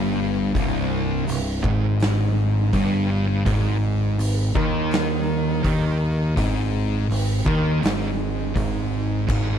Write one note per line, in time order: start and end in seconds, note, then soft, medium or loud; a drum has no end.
0.00 0.51 G1 loud
0.00 0.54 G2 loud
0.54 1.24 C1 loud
0.54 1.25 C2 loud
0.54 kick loud
0.54 open hi-hat medium
1.26 1.62 C1 medium
1.26 1.56 C2 medium
1.26 open hi-hat medium
1.63 2.69 G#1 loud
1.63 2.72 G#2 loud
1.63 kick loud
2.00 snare loud
2.00 open hi-hat medium
2.73 3.42 G1 loud
2.73 3.45 G2 loud
2.73 kick medium
2.73 open hi-hat medium
3.45 4.15 G#1 loud
3.45 4.17 G#2 loud
3.45 kick loud
3.45 open hi-hat medium
4.18 4.52 G#1 medium
4.18 4.48 G#2 medium
4.18 open hi-hat medium
4.54 5.60 D#2 loud
4.54 5.62 D#3 loud
4.54 kick loud
4.91 snare loud
4.91 open hi-hat medium
5.63 6.33 D#2 loud
5.63 6.35 D#3 loud
5.63 kick loud
5.63 open hi-hat medium
6.35 7.06 G#1 loud
6.35 7.07 G#2 loud
6.35 kick loud
6.35 open hi-hat medium
7.09 7.44 G#1 medium
7.09 7.38 G#2 medium
7.09 open hi-hat medium
7.45 7.80 D#2 loud
7.45 7.81 D#3 loud
7.45 kick loud
7.81 8.51 G#1 loud
7.81 8.53 G#2 loud
7.81 open hi-hat medium
7.86 snare loud
8.54 9.24 G#1 loud
8.54 9.26 G#2 loud
8.54 kick medium
8.54 open hi-hat medium
9.27 9.59 G#1 loud
9.27 9.59 G#2 loud
9.27 kick loud
9.27 crash loud